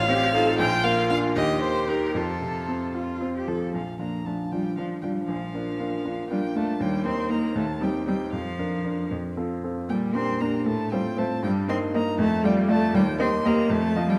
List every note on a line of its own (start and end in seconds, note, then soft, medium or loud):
0.00 0.57 A1 loud
0.00 0.11 F4 loud
0.00 0.57 F5 loud
0.08 0.49 C4 medium
0.08 0.34 G4 loud
0.34 0.57 D#4 medium
0.34 0.57 F4 medium
0.34 0.59 A4 loud
0.58 1.34 A#1 loud
0.58 1.35 F4 loud
0.58 0.85 G5 loud
0.84 1.26 A#3 medium
0.84 1.09 F5 loud
1.09 1.34 D4 medium
1.09 1.34 F4 medium
1.09 1.17 F5 loud
1.35 2.13 D#2 medium
1.35 2.17 G4 medium
1.35 1.62 D#5 loud
1.61 2.04 A#3 medium
1.61 1.91 C5 loud
1.88 2.12 D#4 medium
1.88 2.13 G4 medium
1.88 2.17 A#4 medium
2.15 3.70 F2 medium
2.15 2.91 F4 medium
2.15 2.96 A4 medium
2.41 2.85 C3 soft
2.68 3.11 C4 medium
2.95 3.37 F4 medium
2.95 3.32 F4 medium
3.21 3.63 C4 medium
3.37 3.49 G4 medium
3.48 3.74 F3 medium
3.48 3.73 A4 medium
3.73 3.99 A#1 soft
3.73 3.81 F3 medium
3.73 3.99 F5 soft
3.99 4.23 F3 soft
3.99 4.25 A#3 soft
3.99 4.23 D4 soft
3.99 4.23 F4 soft
3.99 4.27 A#5 soft
4.25 4.49 F3 soft
4.25 4.34 A3 soft
4.25 4.50 D4 soft
4.25 4.50 F4 soft
4.25 4.53 A5 soft
4.52 4.75 F3 soft
4.52 4.76 G3 medium
4.52 4.75 D4 soft
4.52 4.75 F4 soft
4.52 4.76 G5 soft
4.77 5.03 F3 medium
4.77 5.01 F3 soft
4.77 5.01 D4 soft
4.77 5.01 F4 soft
4.77 4.85 F5 soft
5.02 5.26 F3 soft
5.02 5.29 G3 medium
5.02 5.26 D4 soft
5.02 5.27 F4 soft
5.02 5.10 G5 soft
5.27 5.54 A#1 soft
5.27 6.29 F3 medium
5.27 6.28 F5 medium
5.54 5.77 A#3 soft
5.54 5.78 D4 soft
5.54 5.78 F4 soft
5.80 6.03 A#3 soft
5.80 6.03 D4 soft
5.80 6.03 F4 soft
6.05 6.28 A#3 soft
6.05 6.28 D4 soft
6.05 6.28 F4 soft
6.30 6.38 G3 medium
6.30 6.53 A#3 soft
6.30 6.53 D4 soft
6.30 6.54 F4 medium
6.30 6.57 G5 medium
6.54 6.79 A3 medium
6.54 6.78 A#3 soft
6.54 6.78 D4 medium
6.54 6.79 F4 medium
6.54 6.82 A5 medium
6.80 7.05 D#2 medium
6.80 7.06 G3 medium
6.80 7.06 G5 medium
7.05 7.28 A#3 medium
7.05 7.31 C4 medium
7.05 7.28 D#4 medium
7.05 7.30 C6 medium
7.30 7.55 A#3 medium
7.30 7.53 A#3 medium
7.30 7.53 D#4 medium
7.30 7.58 A#5 medium
7.55 7.80 D#2 medium
7.55 7.64 A3 medium
7.55 7.84 A5 medium
7.81 7.89 G3 medium
7.81 8.04 C4 soft
7.81 8.04 D#4 medium
7.81 8.05 G4 medium
7.81 8.06 G5 medium
8.07 8.15 G3 medium
8.07 8.30 C4 medium
8.07 8.30 D#4 soft
8.07 8.31 G4 medium
8.07 8.32 G5 medium
8.33 8.58 F2 medium
8.33 9.09 F3 medium
8.33 9.09 F5 medium
8.59 8.82 D4 soft
8.59 8.82 A#4 soft
8.85 9.08 D4 soft
8.85 9.08 A#4 soft
9.11 9.36 F2 medium
9.37 9.60 C4 soft
9.37 9.60 F4 soft
9.37 9.61 A4 soft
9.63 9.87 C4 soft
9.63 9.87 F4 soft
9.63 9.87 A4 soft
9.89 10.14 A#2 medium
9.89 10.16 G3 medium
9.89 9.97 G5 medium
10.15 10.42 C4 medium
10.15 10.38 D4 soft
10.15 10.38 G4 medium
10.15 10.39 A#4 medium
10.15 10.42 C6 medium
10.40 10.69 A#3 medium
10.40 10.64 D4 soft
10.40 10.64 G4 soft
10.40 10.65 A#4 medium
10.40 10.65 A#5 medium
10.66 10.91 A2 medium
10.66 10.92 A3 medium
10.66 10.93 A5 medium
10.91 11.00 G3 medium
10.91 11.15 C4 medium
10.91 11.15 F4 soft
10.91 11.16 C5 medium
10.91 11.20 G5 medium
11.17 11.26 A3 medium
11.17 11.40 C4 medium
11.17 11.41 F4 medium
11.17 11.41 C5 medium
11.17 11.43 A5 medium
11.43 11.68 G2 medium
11.43 11.68 G3 medium
11.43 11.51 G5 medium
11.68 11.92 A#3 medium
11.68 11.76 C4 medium
11.68 11.92 D#4 medium
11.68 11.92 D#5 medium
11.68 11.77 C6 medium
11.94 12.17 A#3 medium
11.94 12.02 A#3 medium
11.94 12.17 D#4 medium
11.94 12.17 D#5 medium
11.94 12.19 A#5 medium
12.18 12.43 F2 medium
12.18 12.45 A3 loud
12.18 12.44 A5 loud
12.44 12.71 G3 loud
12.44 12.67 A3 medium
12.44 12.67 F4 medium
12.44 12.67 D5 medium
12.44 12.53 G5 medium
12.68 12.92 A3 medium
12.68 12.93 A3 loud
12.68 12.92 F4 medium
12.68 12.92 D5 medium
12.68 12.96 A5 medium
12.94 13.19 D#2 medium
12.94 13.02 G3 loud
12.94 13.20 G5 loud
13.19 13.42 A#3 medium
13.19 13.28 C4 loud
13.19 13.42 G4 medium
13.19 13.43 D#5 medium
13.19 13.47 C6 loud
13.45 13.71 A#3 loud
13.45 13.68 A#3 medium
13.45 13.68 G4 medium
13.45 13.69 D#5 medium
13.45 13.73 A#5 medium
13.70 13.95 F2 medium
13.70 14.07 A3 loud
13.70 14.11 A5 loud
13.96 14.19 F3 medium
13.96 14.19 F4 medium
13.96 14.19 D#5 medium
14.08 14.19 G3 medium
14.08 14.19 G5 medium